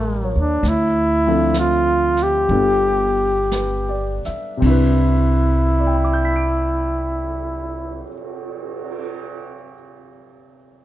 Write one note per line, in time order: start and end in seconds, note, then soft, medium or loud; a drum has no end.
0.00 0.32 A1 medium
0.00 0.64 G3 soft
0.00 0.34 A#3 medium
0.00 0.64 A#3 soft
0.00 0.66 E4 soft
0.00 0.66 A4 soft
0.00 0.47 A#4 soft
0.24 0.84 C#5 soft
0.36 0.61 D#2 soft
0.36 0.70 D4 medium
0.63 2.45 D2 medium
0.63 brush sweep soft
0.63 snare soft
0.68 1.56 E4 medium
1.27 2.50 F3 soft
1.27 2.51 C4 soft
1.27 2.50 D4 soft
1.27 2.50 A4 soft
1.27 2.51 E5 soft
1.54 snare soft
1.54 hi-hat pedal soft
1.59 2.24 F4 medium
2.17 snare soft
2.23 4.28 G4 medium
2.49 4.22 G1 medium
2.49 4.62 G3 soft
2.49 4.63 B3 soft
2.49 4.62 D4 soft
2.49 4.63 F4 soft
2.49 4.63 A4 soft
2.49 brush sweep soft
3.51 4.23 B4 soft
3.51 snare soft
3.51 hi-hat pedal soft
3.89 4.47 D5 soft
4.25 4.85 E5 soft
4.25 muted upright bass stroke soft
4.25 snare soft
4.57 8.00 C3 soft
4.57 8.03 C4 soft
4.62 8.01 C2 medium
4.62 8.06 D4 soft
4.62 kick soft
4.62 ride soft
4.66 8.05 E4 medium
4.66 8.09 E4 soft
4.66 8.12 B4 medium
5.42 cymbal swell soft
5.79 9.18 D5 soft
5.87 9.26 G5 soft
5.95 9.34 B5 soft
6.04 9.43 D6 soft
6.13 9.52 G6 soft
6.25 9.64 B6 soft
6.36 9.75 D7 soft